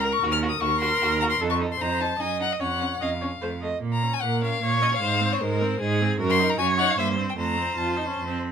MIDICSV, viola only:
0, 0, Header, 1, 2, 480
1, 0, Start_track
1, 0, Key_signature, -5, "minor"
1, 0, Tempo, 398142
1, 269, Time_signature, 3, 2, 24, 8
1, 10271, End_track
2, 0, Start_track
2, 0, Title_t, "Viola"
2, 0, Program_c, 0, 41
2, 0, Note_on_c, 0, 70, 95
2, 730, Note_off_c, 0, 70, 0
2, 737, Note_on_c, 0, 70, 119
2, 1700, Note_on_c, 0, 69, 90
2, 1718, Note_off_c, 0, 70, 0
2, 2159, Note_off_c, 0, 69, 0
2, 2166, Note_on_c, 0, 72, 100
2, 2641, Note_off_c, 0, 72, 0
2, 2649, Note_on_c, 0, 75, 82
2, 3137, Note_on_c, 0, 73, 77
2, 3156, Note_off_c, 0, 75, 0
2, 3583, Note_off_c, 0, 73, 0
2, 3627, Note_on_c, 0, 75, 98
2, 3723, Note_off_c, 0, 75, 0
2, 3871, Note_on_c, 0, 73, 72
2, 3967, Note_off_c, 0, 73, 0
2, 4120, Note_on_c, 0, 72, 78
2, 4217, Note_off_c, 0, 72, 0
2, 4364, Note_on_c, 0, 75, 70
2, 4606, Note_off_c, 0, 75, 0
2, 4612, Note_on_c, 0, 58, 69
2, 4857, Note_on_c, 0, 61, 68
2, 4876, Note_off_c, 0, 58, 0
2, 5104, Note_on_c, 0, 58, 69
2, 5122, Note_off_c, 0, 61, 0
2, 5335, Note_on_c, 0, 61, 74
2, 5353, Note_off_c, 0, 58, 0
2, 5569, Note_off_c, 0, 61, 0
2, 5577, Note_on_c, 0, 58, 69
2, 5806, Note_on_c, 0, 61, 72
2, 5824, Note_off_c, 0, 58, 0
2, 6044, Note_off_c, 0, 61, 0
2, 6052, Note_on_c, 0, 56, 79
2, 6280, Note_on_c, 0, 60, 78
2, 6298, Note_off_c, 0, 56, 0
2, 6529, Note_on_c, 0, 56, 89
2, 6547, Note_off_c, 0, 60, 0
2, 6772, Note_on_c, 0, 60, 89
2, 6790, Note_off_c, 0, 56, 0
2, 6993, Note_off_c, 0, 60, 0
2, 7001, Note_on_c, 0, 56, 85
2, 7251, Note_on_c, 0, 60, 85
2, 7269, Note_off_c, 0, 56, 0
2, 7474, Note_off_c, 0, 60, 0
2, 7482, Note_on_c, 0, 66, 92
2, 7709, Note_on_c, 0, 63, 83
2, 7727, Note_off_c, 0, 66, 0
2, 7932, Note_on_c, 0, 66, 83
2, 7951, Note_off_c, 0, 63, 0
2, 8171, Note_on_c, 0, 63, 83
2, 8189, Note_off_c, 0, 66, 0
2, 8404, Note_off_c, 0, 63, 0
2, 8412, Note_on_c, 0, 58, 75
2, 8645, Note_on_c, 0, 60, 74
2, 8663, Note_off_c, 0, 58, 0
2, 8877, Note_off_c, 0, 60, 0
2, 8884, Note_on_c, 0, 57, 73
2, 9127, Note_on_c, 0, 60, 68
2, 9145, Note_off_c, 0, 57, 0
2, 9352, Note_off_c, 0, 60, 0
2, 9359, Note_on_c, 0, 65, 95
2, 9606, Note_on_c, 0, 63, 90
2, 9624, Note_off_c, 0, 65, 0
2, 9737, Note_off_c, 0, 63, 0
2, 9747, Note_on_c, 0, 61, 72
2, 9970, Note_off_c, 0, 61, 0
2, 9977, Note_on_c, 0, 60, 74
2, 10271, Note_off_c, 0, 60, 0
2, 10271, End_track
0, 0, End_of_file